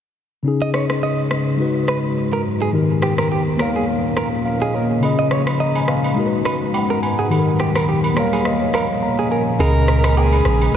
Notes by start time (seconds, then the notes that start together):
0.43 C#3 C#4 D#4
0.48 G#4
0.62 D#5
0.74 C#5, cross-stick
0.90 cross-stick
1.03 D#5
1.31 cross-stick
1.57 G#3 D#4 F#4
1.62 B4
1.88 B4, cross-stick
2.33 A#4
2.62 G#4
2.73 A#2 D#3 D#4 G4 A#4
3.02 G4, cross-stick
3.18 A#4, cross-stick
3.32 G4
3.57 A#3 A#4 C#5, cross-stick
3.62 F5
3.76 G#4
4.17 A#4, cross-stick
4.45 F5
4.61 G#4 D#5
4.74 A#4 C#5
5.00 C#3 C#4 G#4, high agogo
5.05 D#5
5.19 D#5
5.31 C#5, cross-stick
5.47 cross-stick, high agogo
5.60 D#5 A#5
5.75 G#5, high agogo
5.88 F5, cross-stick
6.04 D#5, high agogo
6.14 G#3 D#4 F#4
6.19 A#4
6.26 B4
6.45 B4, cross-stick, high agogo
6.74 F#5, high agogo, low woodblock
6.90 A#4 A#5
7.03 G#5, high agogo
7.18 G#4 F#5
7.30 A#2 D#3 D#4 G4 A4, high agogo
7.39 A#4
7.60 G4, cross-stick
7.75 A#4, cross-stick, high agogo
7.89 G4
8.04 high agogo
8.14 A#3 A#4 C#5, cross-stick
8.19 F5
8.33 G#4, high agogo
8.45 D#5, cross-stick
8.61 C#5
8.74 A#4 F5, cross-stick, high agogo
9.03 A#5
9.19 G#4
9.31 A#4 G#5
9.59 C#2 C#3 G#3 C#4 G#4 A#4 D#5, high agogo, shaker
9.88 A#4, cross-stick, shaker
10.04 G#4, cross-stick, high agogo, shaker
10.16 G#4 A#4, low woodblock, shaker
10.33 high agogo
10.45 A#1, cross-stick, shaker
10.61 high agogo, shaker
10.73 G#1 G#3 D#4, shaker